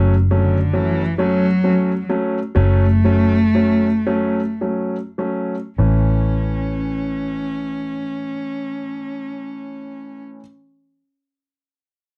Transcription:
Already playing: fingered electric bass F#1, grand piano F#3 A3 C#4
0.31 cello D3, grand piano F#3 A3 C#4
0.73 cello E3, grand piano F#3 A3 C#4
1.18 grand piano F#3 A3 C#4, cello F#3
1.64 grand piano F#3 A3 C#4
2.09 grand piano F#3 A3 C#4
2.55 fingered electric bass F#1, grand piano F#3 A3 C#4, cello A3
3.05 grand piano F#3 A3 C#4
3.55 grand piano F#3 A3 C#4
4.06 grand piano F#3 A3 C#4
4.61 grand piano F#3 A3 C#4
5.18 grand piano F#3 A3 C#4
5.78 fingered electric bass A1, grand piano E3 A3 C#4, cello C#4

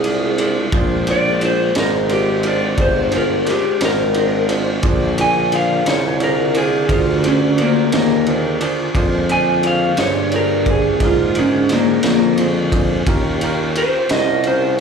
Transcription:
Already playing: tuba C2, tonewheel organ G#3 C4 D4, electric slide guitar G#4
0.04 upright piano D4 F4 G#4 C5, ride
0.38 upright piano D4 F4 G#4 C5, ride
0.72 tuba A#1, tonewheel organ G#3 D4 C5, upright piano D4 F4 G#4 C5, kick, ride
1.07 upright piano D4 F4 G#4 C5, ride
1.11 electric slide guitar D5
1.41 upright piano D4 F4 G#4 C5, ride
1.45 electric slide guitar C5
1.75 tuba G#1, upright piano D4 F4 G#4 C5, snare, ride
1.80 electric slide guitar A#4
2.08 upright piano D4 F4 G#4 C5, ride
2.12 electric slide guitar G4
2.43 upright piano D4 F4 G#4 C5, ride
2.48 electric slide guitar D5
2.77 tuba G1, upright piano D4 F4 G#4 C5, kick, ride
2.82 electric slide guitar C5
3.11 upright piano D4 F4 G#4 C5, ride
3.17 electric slide guitar A#4
3.45 upright piano D4 F4 G#4 C5, snare, ride
3.51 electric slide guitar G4
3.80 tuba G#1, upright piano D4 F4 G#4 C5, snare, ride
3.85 electric slide guitar A#4
4.13 upright piano D4 F4 G#4 C5, ride
4.49 upright piano D4 F4 G#4 C5, ride
4.82 tuba A#1, tonewheel organ D3 G#4 A#4, upright piano D4 F4 G#4 C5, kick, ride
5.18 upright piano D4 F4 G#4 C5, electric slide guitar G#5, ride
5.52 upright piano D4 F4 G#4 C5, electric slide guitar F5, ride
5.86 tuba C2, upright piano D4 F4 G#4 C5, electric slide guitar C#5, snare, ride
6.19 upright piano D4 F4 G#4 C5, ride
6.24 electric slide guitar A#4
6.54 upright piano D4 F4 G#4 C5, electric slide guitar G#4, ride
6.89 tuba D2, upright piano D4 F4 G#4 C5, electric slide guitar F4, kick, ride
7.23 upright piano D4 F4 G#4 C5, ride
7.27 electric slide guitar C#4
7.57 electric slide guitar A#3, upright piano D4 F4 G#4 C5, ride
7.92 tuba D#2, electric slide guitar A#3, upright piano D4 F4 G#4 C5, snare, ride
8.26 upright piano D4 F4 G#4 C5, ride
8.60 upright piano D4 F4 G#4 C5, ride
8.95 tuba F2, tonewheel organ D3 A#3 G#4, upright piano D4 F4 G#4 C5, kick, ride
9.29 upright piano D4 F4 G#4 C5, electric slide guitar G#5, ride
9.63 upright piano D4 F4 G#4 C5, electric slide guitar F5, ride
9.97 tuba G2, upright piano D4 F4 G#4 C5, electric slide guitar C#5, snare, ride
10.32 upright piano D4 F4 G#4 C5, ride
10.36 electric slide guitar A#4
10.66 upright piano D4 F4 G#4 C5, kick, ride
10.71 electric slide guitar G#4
11.00 tuba G#2, upright piano D4 F4 G#4 A#4, kick, snare, ride
11.05 electric slide guitar F4
11.35 upright piano D4 F4 G#4 A#4, ride
11.39 electric slide guitar C#4
11.69 upright piano D4 F4 G#4 D5, snare, ride
11.73 electric slide guitar A#3
12.03 tuba F2, electric slide guitar A#3, upright piano D4 F4 G#4 C5, snare, ride
12.37 upright piano D4 F4 G#4 C5, ride
12.72 upright piano D4 F4 G#4 C5, kick, ride
13.06 tuba D#2, upright piano C#4 F4 G4 A#4, tonewheel organ C#4 F4 G4, kick, ride
13.41 upright piano C#4 F4 G4 A#4, ride
13.75 upright piano C#4 F4 G4 A#4, electric slide guitar C5, ride
14.09 tuba C2, upright piano C#4 F4 G4 A#4, electric slide guitar D#5, snare, ride
14.44 upright piano C#4 F4 G4 A#4, electric slide guitar C5, ride

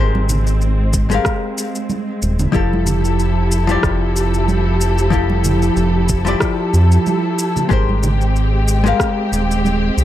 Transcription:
Already playing: analog synth bass G#1, hollow-body jazz guitar G#3 G4 A#4, string section G#3 C4
0.00 hollow-body jazz guitar C5
0.15 high conga
0.29 low conga, shaker
0.47 shaker
0.61 shaker
0.93 kick, shaker
1.10 hollow-body jazz guitar G#3 G4 A#4, high conga, shaker
1.14 hollow-body jazz guitar F5
1.25 kick, cross-stick, shaker
1.58 shaker
1.75 shaker
1.89 high conga, shaker
2.22 analog synth bass D#1, shaker
2.39 low conga, shaker
2.52 analog synth bass F1, hollow-body jazz guitar F3 E4 G4 A4, string section F3 E4 G4 A4, kick, shaker
2.73 high conga
2.86 low conga, shaker
3.05 shaker
3.19 shaker
3.52 shaker
3.67 hollow-body jazz guitar F3 E4 G4 D5, high conga, shaker
3.83 analog synth bass F1, kick, cross-stick, shaker
4.16 shaker
4.34 shaker
4.48 high conga, shaker
4.81 shaker
4.98 shaker
5.10 hollow-body jazz guitar F3 E4 G4 A4, kick, shaker
5.30 high conga
5.44 low conga, shaker
5.62 shaker
5.76 analog synth bass F1, shaker
6.09 kick, shaker
6.25 hollow-body jazz guitar F3 E4 G4 D5, high conga, shaker
6.40 kick, cross-stick, shaker
6.74 analog synth bass F2, shaker
6.92 shaker
7.06 high conga, shaker
7.39 shaker
7.56 low conga, shaker
7.69 analog synth bass G#1, hollow-body jazz guitar G#3 G4 A#4, string section G#3 C4 G4, kick, shaker
7.73 hollow-body jazz guitar C5
7.89 high conga
8.03 low conga, shaker
8.21 shaker
8.36 shaker
8.68 shaker
8.84 hollow-body jazz guitar G#3 G4 A#4, high conga, shaker
8.88 hollow-body jazz guitar F5
9.00 kick, cross-stick, shaker
9.32 analog synth bass D#1, shaker
9.51 shaker
9.65 high conga, shaker
9.97 analog synth bass C2, shaker

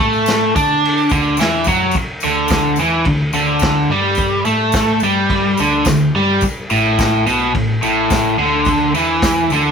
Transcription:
0.00 picked electric bass A2, overdriven electric guitar A3
0.13 tambourine
0.26 snare, tambourine, crash
0.56 picked electric bass D3, overdriven electric guitar D4, kick, tambourine
0.68 tambourine
0.85 crash
0.98 tambourine
1.09 picked electric bass D2, overdriven electric guitar D3, kick, tambourine
1.23 tambourine
1.37 picked electric bass E2, overdriven electric guitar E3, tambourine, crash
1.41 snare
1.64 picked electric bass F#2, kick, tambourine
1.68 overdriven electric guitar F#3
1.91 kick, tambourine
1.95 muted overdriven electric guitar stroke, crash
2.20 overdriven electric guitar D3, tambourine
2.25 picked electric bass D2
2.48 kick, snare, tambourine, crash
2.76 picked electric bass E2, overdriven electric guitar E3, tambourine
3.05 picked electric bass D2, overdriven electric guitar D3, kick, crash
3.33 picked electric bass D2, overdriven electric guitar D3, tambourine
3.59 kick, snare, tambourine, crash
3.89 picked electric bass G2, overdriven electric guitar G3
4.15 kick, tambourine, crash
4.45 picked electric bass A2, overdriven electric guitar A3, tambourine
4.72 kick, snare, tambourine, crash
5.00 picked electric bass G2, overdriven electric guitar G3, tambourine
5.30 kick, crash
5.57 picked electric bass D2, overdriven electric guitar D3, tambourine
5.85 picked electric bass D2, overdriven electric guitar D3, kick, snare, tambourine, crash
6.15 picked electric bass G2, overdriven electric guitar G3
6.41 muted picked electric bass stroke, muted overdriven electric guitar stroke, kick, tambourine, crash
6.70 picked electric bass A1, overdriven electric guitar A2, tambourine
6.98 kick, snare, tambourine, crash
7.27 picked electric bass B1, overdriven electric guitar B2, tambourine
7.55 picked electric bass A1, overdriven electric guitar A2, kick, crash
7.82 picked electric bass A1, overdriven electric guitar A2, tambourine
8.10 kick, snare, tambourine, crash
8.38 picked electric bass D2, overdriven electric guitar D3
8.65 kick, tambourine, crash
8.95 picked electric bass E2, overdriven electric guitar E3, tambourine
9.22 kick, snare, tambourine, crash
9.50 picked electric bass D2, overdriven electric guitar D3, tambourine

